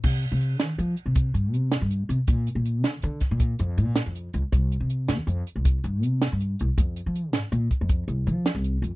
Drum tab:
CC |x-----------|------------|------------|------------|
HH |-xxxxxxxxxxx|xxxxxxxxxxxx|xxxxxxxxxxxx|xxxxxxxxxxxx|
SD |---o-----o--|---o-o---o--|---o-----o--|---o-----o--|
BD |o-----o-----|o----oo-----|o-----o-----|o----oo-----|